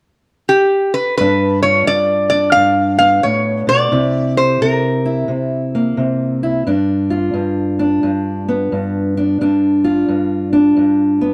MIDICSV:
0, 0, Header, 1, 3, 480
1, 0, Start_track
1, 0, Tempo, 684151
1, 831, Time_signature, 4, 2, 24, 8
1, 7955, End_track
2, 0, Start_track
2, 0, Title_t, "Resonator guitar played with a steel bar"
2, 0, Program_c, 0, 25
2, 343, Note_on_c, 0, 67, 71
2, 644, Note_off_c, 0, 67, 0
2, 659, Note_on_c, 0, 71, 74
2, 816, Note_off_c, 0, 71, 0
2, 825, Note_on_c, 0, 71, 83
2, 1137, Note_off_c, 0, 71, 0
2, 1140, Note_on_c, 0, 73, 80
2, 1311, Note_off_c, 0, 73, 0
2, 1314, Note_on_c, 0, 74, 88
2, 1603, Note_off_c, 0, 74, 0
2, 1611, Note_on_c, 0, 74, 78
2, 1768, Note_on_c, 0, 77, 97
2, 1787, Note_off_c, 0, 74, 0
2, 2086, Note_off_c, 0, 77, 0
2, 2095, Note_on_c, 0, 77, 83
2, 2268, Note_on_c, 0, 73, 76
2, 2273, Note_off_c, 0, 77, 0
2, 2560, Note_off_c, 0, 73, 0
2, 2587, Note_on_c, 0, 74, 85
2, 3066, Note_off_c, 0, 74, 0
2, 3069, Note_on_c, 0, 72, 74
2, 3223, Note_off_c, 0, 72, 0
2, 3241, Note_on_c, 0, 70, 65
2, 3689, Note_off_c, 0, 70, 0
2, 7955, End_track
3, 0, Start_track
3, 0, Title_t, "Steel-string acoustic guitar"
3, 0, Program_c, 1, 25
3, 840, Note_on_c, 1, 43, 75
3, 845, Note_on_c, 1, 62, 57
3, 1149, Note_on_c, 1, 65, 62
3, 1302, Note_off_c, 1, 43, 0
3, 1310, Note_on_c, 1, 43, 55
3, 1618, Note_off_c, 1, 62, 0
3, 1627, Note_on_c, 1, 62, 51
3, 1785, Note_off_c, 1, 43, 0
3, 1794, Note_on_c, 1, 43, 61
3, 2107, Note_on_c, 1, 59, 51
3, 2273, Note_off_c, 1, 43, 0
3, 2277, Note_on_c, 1, 45, 52
3, 2572, Note_off_c, 1, 45, 0
3, 2575, Note_on_c, 1, 47, 62
3, 2734, Note_off_c, 1, 59, 0
3, 2734, Note_off_c, 1, 62, 0
3, 2735, Note_off_c, 1, 65, 0
3, 2745, Note_off_c, 1, 47, 0
3, 2748, Note_on_c, 1, 48, 70
3, 2752, Note_on_c, 1, 64, 55
3, 3065, Note_on_c, 1, 67, 57
3, 3226, Note_off_c, 1, 48, 0
3, 3234, Note_on_c, 1, 48, 64
3, 3538, Note_off_c, 1, 64, 0
3, 3546, Note_on_c, 1, 64, 50
3, 3697, Note_off_c, 1, 48, 0
3, 3705, Note_on_c, 1, 48, 57
3, 4033, Note_on_c, 1, 58, 53
3, 4182, Note_off_c, 1, 48, 0
3, 4190, Note_on_c, 1, 48, 60
3, 4503, Note_off_c, 1, 64, 0
3, 4512, Note_on_c, 1, 64, 56
3, 4651, Note_off_c, 1, 48, 0
3, 4656, Note_off_c, 1, 64, 0
3, 4657, Note_off_c, 1, 58, 0
3, 4677, Note_on_c, 1, 43, 74
3, 4680, Note_on_c, 1, 62, 58
3, 4981, Note_off_c, 1, 67, 0
3, 4984, Note_on_c, 1, 65, 57
3, 5143, Note_off_c, 1, 43, 0
3, 5146, Note_on_c, 1, 43, 65
3, 5464, Note_off_c, 1, 62, 0
3, 5467, Note_on_c, 1, 62, 56
3, 5631, Note_off_c, 1, 43, 0
3, 5634, Note_on_c, 1, 43, 63
3, 5953, Note_on_c, 1, 59, 56
3, 6110, Note_off_c, 1, 43, 0
3, 6119, Note_on_c, 1, 43, 65
3, 6424, Note_off_c, 1, 62, 0
3, 6436, Note_on_c, 1, 62, 59
3, 6570, Note_off_c, 1, 65, 0
3, 6575, Note_off_c, 1, 59, 0
3, 6577, Note_off_c, 1, 62, 0
3, 6594, Note_off_c, 1, 43, 0
3, 6601, Note_on_c, 1, 43, 72
3, 6605, Note_on_c, 1, 62, 62
3, 6907, Note_on_c, 1, 65, 60
3, 7067, Note_off_c, 1, 43, 0
3, 7075, Note_on_c, 1, 43, 58
3, 7377, Note_off_c, 1, 62, 0
3, 7386, Note_on_c, 1, 62, 56
3, 7544, Note_off_c, 1, 43, 0
3, 7553, Note_on_c, 1, 43, 64
3, 7867, Note_on_c, 1, 59, 51
3, 7955, Note_off_c, 1, 43, 0
3, 7955, Note_off_c, 1, 59, 0
3, 7955, Note_off_c, 1, 62, 0
3, 7955, Note_off_c, 1, 65, 0
3, 7955, End_track
0, 0, End_of_file